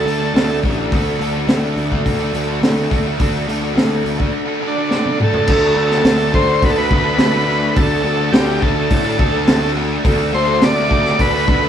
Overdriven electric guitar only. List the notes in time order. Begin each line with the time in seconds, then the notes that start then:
0.05 D3 D4 F#4 A4
0.20 D4 F#4 A4
0.34 D3 D4 F#4 A4
0.62 D3 D4 F#4 A4
0.77 D4 F#4 A4
0.92 D3 D4 F#4 A4
1.20 D3 D4 F#4 A4
1.33 D4 F#4 A4
1.47 D3 D4 F#4 A4
1.90 D4 F#4 A4
2.20 D4 F#4 A4
2.33 D3 D4 F#4 A4
2.47 D4 F#4 A4
2.61 D3 D4 F#4 A4
2.90 D3 D4 F#4 A4
3.05 D4 F#4 A4
3.18 D3 D4 F#4 A4
3.47 D3 D4 F#4 A4
3.61 D4 F#4 A4
3.73 D3 D4 F#4 A4
4.16 D4 F#4 A4
4.45 D4 F#4 A4
4.60 D3 D4 F#4 A4
4.75 D4 F#4 A4
4.89 D3 D4 F#4 A4
5.17 D3 D4 F#4 A4
5.32 D4 F#4 A4
5.45 D3 D4 F#4 A4
5.74 D3 D4 F#4 A4
5.88 D4 F#4 A4
6.01 D3 D4 F#4 A4
6.31 D3 D4 F#4 A4
6.45 D4 F#4 A4
6.75 D4 F#4 A4
6.89 D3 D4 F#4 A4
7.03 D4 F#4 A4
7.18 D3 D4 F#4 A4
7.32 D4 F#4 A4
7.44 D3 D4 F#4 A4
7.73 D3 D4 F#4 A4
8.03 D3 D4 F#4 A4
8.16 D4 F#4 A4
8.31 D3 D4 F#4 A4
8.60 D3 D4 F#4 A4
8.75 D4 F#4 A4
9.04 D4 F#4 A4
9.18 D3 D4 F#4 A4
9.32 D4 F#4 A4
9.45 D3 D4 F#4 A4
9.60 D4 F#4 A4
9.75 D3 D4 F#4 A4
10.04 D3 D4 F#4 A4
10.33 D3 D4 F#4 A4
10.47 D4 F#4 A4
10.60 D3 D4 F#4 A4
10.87 D3 D4 F#4 A4
11.02 D4 F#4 A4
11.31 D4 F#4 A4
11.45 D3 D4 F#4 A4
11.61 D4 F#4 A4